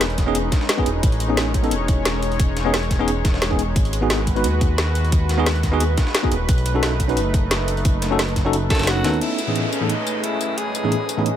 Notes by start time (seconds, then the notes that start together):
Already playing: E1 G#3 C#4 D#4 B4
0.01 snare, closed hi-hat, open hi-hat
0.10 closed hi-hat
0.18 kick, snare, closed hi-hat
0.26 B3 C#4 D#4 G#4
0.35 closed hi-hat
0.52 kick, snare, closed hi-hat
0.61 snare
0.69 snare, closed hi-hat
0.77 B3 C#4 D#4 G#4, kick
0.86 E1, closed hi-hat
1.03 A1 C#5, kick, closed hi-hat
1.12 closed hi-hat
1.20 closed hi-hat
1.29 B3 C#4 D#4 G#4
1.37 snare, closed hi-hat
1.54 kick, closed hi-hat
1.62 B3 C#4 D#4 A4, closed hi-hat
1.71 E1, closed hi-hat
1.88 kick, closed hi-hat
2.05 snare, closed hi-hat
2.22 closed hi-hat
2.32 closed hi-hat
2.40 kick, closed hi-hat
2.57 snare, closed hi-hat
2.65 B3 C#4 D#4 G#4
2.74 snare, closed hi-hat, open hi-hat
2.83 closed hi-hat
2.91 kick, snare, closed hi-hat
2.99 B3 C#4 D#4 G#4
3.08 E1, closed hi-hat
3.25 E1, kick, snare, closed hi-hat
3.34 snare
3.42 snare, closed hi-hat
3.50 B3 C#4 D#4 G#4, kick
3.59 closed hi-hat
3.76 G#1 F#4 B4, kick, closed hi-hat
3.85 closed hi-hat
3.93 closed hi-hat
4.01 B3 D#4 F#4 G#4
4.10 snare, closed hi-hat
4.27 kick, closed hi-hat
4.35 B3 D#4 F#4 B4, closed hi-hat
4.44 D#2, closed hi-hat
4.61 kick, closed hi-hat
4.78 snare, closed hi-hat
4.95 closed hi-hat
5.05 closed hi-hat
5.12 kick, closed hi-hat
5.29 snare, closed hi-hat
5.38 B3 D#4 F#4 G#4
5.46 snare, closed hi-hat, open hi-hat
5.56 closed hi-hat
5.63 kick, snare, closed hi-hat
5.72 B3 D#4 F#4 G#4
5.80 closed hi-hat
5.97 kick, snare, closed hi-hat
6.07 snare
6.15 snare, closed hi-hat
6.23 B3 D#4 F#4 G#4, kick
6.32 D#1, closed hi-hat
6.49 B1 A3 D#4, kick, closed hi-hat
6.58 closed hi-hat
6.66 closed hi-hat
6.74 C#4 D#4 F#4 A4
6.83 snare, closed hi-hat
7.00 kick, closed hi-hat
7.08 C#4 D#4 F#4 B4, closed hi-hat
7.17 F#1, closed hi-hat
7.34 kick, closed hi-hat
7.51 snare, closed hi-hat
7.68 closed hi-hat
7.77 closed hi-hat
7.85 kick, closed hi-hat
8.02 snare, closed hi-hat
8.10 C#4 D#4 F#4 A4
8.19 snare, closed hi-hat, open hi-hat
8.29 closed hi-hat
8.36 kick, snare, closed hi-hat
8.45 C#4 D#4 F#4 A4
8.53 closed hi-hat
8.69 C#4 D#4 F#4 A4 C#5, kick, snare, closed hi-hat
8.75 snare, closed hi-hat
8.79 F#1, snare, closed hi-hat
8.83 snare, closed hi-hat
8.87 F#4, snare, closed hi-hat
9.04 D#2 B3 C#4 D#4 A4, snare, closed hi-hat, open hi-hat
9.14 closed hi-hat
9.21 A3 C#4 E4 G#4 B4 D#5, closed hi-hat, downlifter
9.39 closed hi-hat, tambourine
9.47 A2 E3 B3 C#4 D#4 G#4
9.56 closed hi-hat
9.72 C#4, closed hi-hat, tambourine
9.81 A2 E3 B3 C#4 D#4 A4
9.89 D#4, closed hi-hat
10.07 closed hi-hat, tambourine
10.24 E4, closed hi-hat
10.41 closed hi-hat, tambourine
10.58 G#4, closed hi-hat
10.75 closed hi-hat, tambourine
10.83 A2 E3 B3 C#4 D#4 G#4
10.92 closed hi-hat
11.09 closed hi-hat, tambourine
11.17 A2 E3 B3 C#4 D#4 G#4
11.26 closed hi-hat